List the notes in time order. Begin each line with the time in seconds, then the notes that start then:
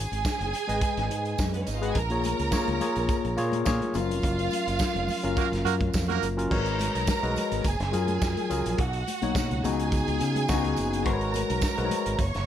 Already playing: G#4 G#5
0.12 G#1, closed hi-hat
0.25 kick, snare, tambourine
0.40 F#1, closed hi-hat
0.53 closed hi-hat, tambourine
0.67 G#1 G#3 G#4 B4 D#5, closed hi-hat
0.81 kick, closed hi-hat, tambourine
0.97 G#1, snare, closed hi-hat
1.10 G#2, closed hi-hat
1.25 closed hi-hat
1.38 F#2, kick, snare, tambourine
1.54 B3 B4, closed hi-hat
1.62 C#4 C#5
1.67 G#1 D#4 D#5, closed hi-hat, tambourine
1.76 F4 F5
1.81 G#3 F#4 G#4 B4 D#5 F#5, closed hi-hat
1.90 G#4 G#5
1.95 A#1 A#4 A#5, kick, closed hi-hat, tambourine, muted conga, low conga
2.10 A#3 F4 G#4 C#5, closed hi-hat
2.24 closed hi-hat, tambourine, muted conga, high conga
2.39 C#2, closed hi-hat
2.51 A#3 F4 G#4 C#5, kick, snare, tambourine, muted conga
2.68 C#2, closed hi-hat, high conga
2.80 A#3 F4 G#4 C#5, closed hi-hat, tambourine, high conga, low conga
2.96 A#1, closed hi-hat
3.09 kick, closed hi-hat, tambourine, muted conga
3.25 A#1, closed hi-hat
3.37 A#2 A#3 F4 G#4 C#5, closed hi-hat, tambourine, muted conga
3.52 closed hi-hat, high conga
3.65 A#2 A#3 F4 G#4 C#5, kick, snare, tambourine, muted conga
3.81 closed hi-hat, high conga
3.94 F#1 F#3 C#4 F4 A#4 F5, closed hi-hat, tambourine, muted conga, low conga
4.11 F1, closed hi-hat
4.22 F#1, kick, closed hi-hat, tambourine, muted conga, low conga
4.39 closed hi-hat
4.51 closed hi-hat, tambourine, high conga
4.67 F#1, closed hi-hat
4.79 kick, snare, tambourine, muted conga
4.95 F1, closed hi-hat, high conga
5.08 open hi-hat, tambourine, muted conga, high conga, low conga
5.23 F#1 F#3 C#4 F4 A#4, closed hi-hat
5.36 A#3 F#4 A#4, kick, closed hi-hat, tambourine, muted conga
5.52 F#1, snare, closed hi-hat
5.65 F#2 A#3 F#4 A#4, closed hi-hat, tambourine, muted conga
5.80 kick, closed hi-hat, high conga
5.93 F2, kick, snare, tambourine, muted conga
6.09 A#3 F#4 A#4, closed hi-hat, high conga
6.22 F#1, closed hi-hat, tambourine, low conga
6.37 F#3 C#4 F4 A#4, closed hi-hat
6.50 G#1 G#3 F#4 A#4 B4 C#5 A#5, kick, crash
6.66 closed hi-hat
6.79 closed hi-hat, tambourine, muted conga, high conga
6.95 B1, closed hi-hat
7.07 kick, snare, tambourine, muted conga
7.23 B1 G#3 F#4 A#4 B4 D#5, closed hi-hat, high conga
7.36 closed hi-hat, tambourine, muted conga, high conga, low conga
7.52 G#1, closed hi-hat
7.64 F#1 G#4 G#5, kick, closed hi-hat, tambourine
7.80 F#1, snare, closed hi-hat
7.92 F#2 F#3 F4 G#4 A#4, closed hi-hat, tambourine, muted conga
8.08 closed hi-hat, high conga
8.22 F#2, kick, snare, tambourine
8.37 closed hi-hat, high conga
8.50 C#2 F#3 F4 G#4 A#4, closed hi-hat, tambourine, low conga
8.66 A#1, closed hi-hat
8.78 B1 F#4 F#5, kick, closed hi-hat, muted conga
8.93 closed hi-hat
9.07 closed hi-hat, tambourine, muted conga, high conga
9.22 B1 B2 A#3 D#4 C#5, closed hi-hat
9.35 kick, snare, tambourine, muted conga
9.51 C#2, closed hi-hat, high conga
9.64 C#2 C#3 B3 D#4 F#4 G#4 G#5, closed hi-hat, tambourine, muted conga, high conga, low conga
9.80 closed hi-hat
9.92 kick, closed hi-hat, tambourine
10.08 C#2, closed hi-hat
10.20 C#3, closed hi-hat, tambourine, muted conga
10.35 closed hi-hat, high conga
10.48 C#2 C#3 B3 D#4 F#4, kick, snare, tambourine, muted conga
10.64 closed hi-hat, high conga
10.76 F#1, closed hi-hat, tambourine, muted conga, low conga
10.93 closed hi-hat
11.05 G#1 G#3 F#4 A#4 B4 C5 A#5, kick, closed hi-hat
11.13 C#5
11.21 closed hi-hat
11.34 closed hi-hat, tambourine, muted conga, high conga
11.50 B1, closed hi-hat
11.61 kick, snare, tambourine, muted conga
11.77 B1 G#3 F#4 A#4 B4 C5, closed hi-hat, high conga
11.85 C#5
11.91 closed hi-hat, tambourine, muted conga, high conga, low conga
12.06 G#1, closed hi-hat
12.18 F#1 C#5 C#6, kick, closed hi-hat, tambourine, muted conga
12.34 F#1, snare, closed hi-hat